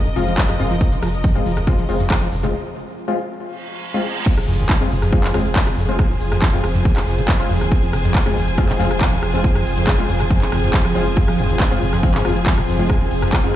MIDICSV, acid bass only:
0, 0, Header, 1, 2, 480
1, 0, Start_track
1, 0, Key_signature, -4, "minor"
1, 0, Tempo, 431655
1, 901, Time_signature, 4, 2, 24, 8
1, 15076, End_track
2, 0, Start_track
2, 0, Title_t, "Acid bass"
2, 0, Program_c, 0, 38
2, 62, Note_on_c, 0, 41, 79
2, 102, Note_off_c, 0, 41, 0
2, 178, Note_on_c, 0, 48, 79
2, 220, Note_off_c, 0, 48, 0
2, 303, Note_on_c, 0, 53, 76
2, 367, Note_off_c, 0, 53, 0
2, 544, Note_on_c, 0, 41, 74
2, 639, Note_off_c, 0, 41, 0
2, 659, Note_on_c, 0, 44, 81
2, 728, Note_off_c, 0, 44, 0
2, 783, Note_on_c, 0, 53, 98
2, 847, Note_off_c, 0, 53, 0
2, 898, Note_on_c, 0, 41, 84
2, 940, Note_off_c, 0, 41, 0
2, 1023, Note_on_c, 0, 48, 80
2, 1062, Note_off_c, 0, 48, 0
2, 1139, Note_on_c, 0, 53, 78
2, 1208, Note_off_c, 0, 53, 0
2, 1379, Note_on_c, 0, 41, 84
2, 1482, Note_off_c, 0, 41, 0
2, 1504, Note_on_c, 0, 44, 77
2, 1568, Note_off_c, 0, 44, 0
2, 1619, Note_on_c, 0, 53, 97
2, 1688, Note_off_c, 0, 53, 0
2, 1743, Note_on_c, 0, 41, 78
2, 1782, Note_off_c, 0, 41, 0
2, 1858, Note_on_c, 0, 48, 89
2, 1900, Note_off_c, 0, 48, 0
2, 1984, Note_on_c, 0, 53, 79
2, 2048, Note_off_c, 0, 53, 0
2, 2224, Note_on_c, 0, 41, 77
2, 2320, Note_off_c, 0, 41, 0
2, 2339, Note_on_c, 0, 44, 85
2, 2408, Note_off_c, 0, 44, 0
2, 2463, Note_on_c, 0, 53, 96
2, 2527, Note_off_c, 0, 53, 0
2, 2579, Note_on_c, 0, 41, 76
2, 2621, Note_off_c, 0, 41, 0
2, 2704, Note_on_c, 0, 48, 74
2, 2742, Note_off_c, 0, 48, 0
2, 4740, Note_on_c, 0, 41, 99
2, 4843, Note_off_c, 0, 41, 0
2, 4980, Note_on_c, 0, 41, 97
2, 5083, Note_off_c, 0, 41, 0
2, 5104, Note_on_c, 0, 39, 75
2, 5168, Note_off_c, 0, 39, 0
2, 5344, Note_on_c, 0, 41, 80
2, 5460, Note_on_c, 0, 53, 100
2, 5477, Note_off_c, 0, 41, 0
2, 5501, Note_off_c, 0, 53, 0
2, 5585, Note_on_c, 0, 41, 102
2, 5680, Note_off_c, 0, 41, 0
2, 5825, Note_on_c, 0, 41, 101
2, 5920, Note_off_c, 0, 41, 0
2, 5941, Note_on_c, 0, 39, 81
2, 6009, Note_off_c, 0, 39, 0
2, 6181, Note_on_c, 0, 41, 84
2, 6306, Note_on_c, 0, 53, 101
2, 6322, Note_off_c, 0, 41, 0
2, 6343, Note_off_c, 0, 53, 0
2, 6423, Note_on_c, 0, 41, 103
2, 6524, Note_off_c, 0, 41, 0
2, 6661, Note_on_c, 0, 41, 99
2, 6763, Note_off_c, 0, 41, 0
2, 6787, Note_on_c, 0, 39, 77
2, 6849, Note_off_c, 0, 39, 0
2, 7026, Note_on_c, 0, 41, 79
2, 7140, Note_on_c, 0, 53, 100
2, 7157, Note_off_c, 0, 41, 0
2, 7181, Note_off_c, 0, 53, 0
2, 7264, Note_on_c, 0, 41, 100
2, 7360, Note_off_c, 0, 41, 0
2, 7505, Note_on_c, 0, 41, 104
2, 7600, Note_off_c, 0, 41, 0
2, 7620, Note_on_c, 0, 39, 87
2, 7689, Note_off_c, 0, 39, 0
2, 7860, Note_on_c, 0, 41, 77
2, 7985, Note_on_c, 0, 53, 102
2, 8002, Note_off_c, 0, 41, 0
2, 8023, Note_off_c, 0, 53, 0
2, 8101, Note_on_c, 0, 41, 104
2, 8203, Note_off_c, 0, 41, 0
2, 8341, Note_on_c, 0, 41, 99
2, 8444, Note_off_c, 0, 41, 0
2, 8467, Note_on_c, 0, 39, 70
2, 8529, Note_off_c, 0, 39, 0
2, 8706, Note_on_c, 0, 41, 82
2, 8821, Note_on_c, 0, 53, 108
2, 8838, Note_off_c, 0, 41, 0
2, 8862, Note_off_c, 0, 53, 0
2, 8946, Note_on_c, 0, 41, 102
2, 9041, Note_off_c, 0, 41, 0
2, 9186, Note_on_c, 0, 41, 101
2, 9281, Note_off_c, 0, 41, 0
2, 9301, Note_on_c, 0, 39, 78
2, 9369, Note_off_c, 0, 39, 0
2, 9540, Note_on_c, 0, 41, 84
2, 9664, Note_on_c, 0, 53, 102
2, 9680, Note_off_c, 0, 41, 0
2, 9702, Note_off_c, 0, 53, 0
2, 9779, Note_on_c, 0, 41, 105
2, 9882, Note_off_c, 0, 41, 0
2, 10020, Note_on_c, 0, 41, 104
2, 10123, Note_off_c, 0, 41, 0
2, 10144, Note_on_c, 0, 39, 74
2, 10208, Note_off_c, 0, 39, 0
2, 10384, Note_on_c, 0, 41, 73
2, 10499, Note_on_c, 0, 53, 105
2, 10516, Note_off_c, 0, 41, 0
2, 10541, Note_off_c, 0, 53, 0
2, 10623, Note_on_c, 0, 41, 109
2, 10719, Note_off_c, 0, 41, 0
2, 10863, Note_on_c, 0, 41, 100
2, 10959, Note_off_c, 0, 41, 0
2, 11218, Note_on_c, 0, 41, 79
2, 11344, Note_on_c, 0, 53, 101
2, 11360, Note_off_c, 0, 41, 0
2, 11382, Note_off_c, 0, 53, 0
2, 11459, Note_on_c, 0, 41, 105
2, 11562, Note_off_c, 0, 41, 0
2, 11699, Note_on_c, 0, 41, 103
2, 11768, Note_off_c, 0, 41, 0
2, 11824, Note_on_c, 0, 41, 77
2, 11888, Note_off_c, 0, 41, 0
2, 12064, Note_on_c, 0, 53, 101
2, 12159, Note_off_c, 0, 53, 0
2, 12179, Note_on_c, 0, 53, 77
2, 12248, Note_off_c, 0, 53, 0
2, 12419, Note_on_c, 0, 41, 106
2, 12522, Note_off_c, 0, 41, 0
2, 12543, Note_on_c, 0, 53, 109
2, 12661, Note_on_c, 0, 41, 107
2, 12677, Note_off_c, 0, 53, 0
2, 12763, Note_off_c, 0, 41, 0
2, 12786, Note_on_c, 0, 39, 77
2, 12849, Note_off_c, 0, 39, 0
2, 13026, Note_on_c, 0, 41, 76
2, 13140, Note_on_c, 0, 53, 104
2, 13157, Note_off_c, 0, 41, 0
2, 13181, Note_off_c, 0, 53, 0
2, 13265, Note_on_c, 0, 41, 103
2, 13360, Note_off_c, 0, 41, 0
2, 13381, Note_on_c, 0, 53, 97
2, 13505, Note_on_c, 0, 41, 109
2, 13522, Note_off_c, 0, 53, 0
2, 13600, Note_off_c, 0, 41, 0
2, 13621, Note_on_c, 0, 39, 79
2, 13689, Note_off_c, 0, 39, 0
2, 13861, Note_on_c, 0, 41, 84
2, 13986, Note_on_c, 0, 53, 93
2, 14003, Note_off_c, 0, 41, 0
2, 14023, Note_off_c, 0, 53, 0
2, 14101, Note_on_c, 0, 41, 101
2, 14203, Note_off_c, 0, 41, 0
2, 14225, Note_on_c, 0, 53, 102
2, 14341, Note_on_c, 0, 41, 102
2, 14357, Note_off_c, 0, 53, 0
2, 14443, Note_off_c, 0, 41, 0
2, 14464, Note_on_c, 0, 39, 79
2, 14528, Note_off_c, 0, 39, 0
2, 14706, Note_on_c, 0, 41, 72
2, 14821, Note_on_c, 0, 53, 101
2, 14837, Note_off_c, 0, 41, 0
2, 14862, Note_off_c, 0, 53, 0
2, 14945, Note_on_c, 0, 41, 108
2, 15040, Note_off_c, 0, 41, 0
2, 15076, End_track
0, 0, End_of_file